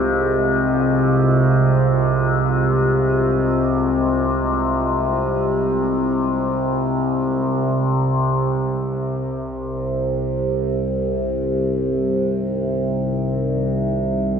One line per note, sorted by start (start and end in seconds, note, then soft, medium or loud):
0.00 8.94 C2 medium
0.00 8.93 C3 medium
0.00 8.95 G#3 medium
0.00 11.82 F4 medium
0.00 8.95 C5 medium
0.00 14.40 D#5 medium
8.95 14.40 C2 medium
8.95 14.40 C3 medium
8.95 14.40 G3 medium
8.95 14.40 C4 medium
8.95 14.40 C5 medium
9.56 14.40 D#4 medium
9.62 14.40 C5 medium